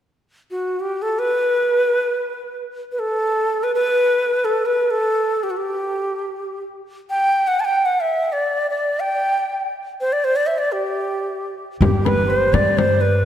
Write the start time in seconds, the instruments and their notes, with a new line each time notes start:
0.51 ney F#4
0.80 ney G4
1.02 ney A4
1.19 ney B4
2.92 ney B4
2.99 ney A4
3.63 ney B4
3.75 ney B4
4.45 ney A4
4.66 ney B4
4.90 ney A4
5.43 ney G4
5.50 ney F#4
5.57 ney G4
7.10 ney G5
7.47 ney F#5
7.60 ney A5
7.65 ney G5
7.86 ney F#5
8.01 ney E5
8.33 ney D5
8.70 ney D5
9.00 ney G5
10.01 ney C5
10.13 ney D5
10.24 ney C5
10.36 ney D5
10.47 ney E5
10.58 ney D5
10.72 ney G4
11.81 upright bass G1, santur G4, ney G4, frame drum
12.05 santur B4, ney B4, frame drum
12.28 santur C5, ney C5
12.53 upright bass G2, santur D5, ney D5, frame drum
12.77 ney C5, frame drum
13.01 ney B4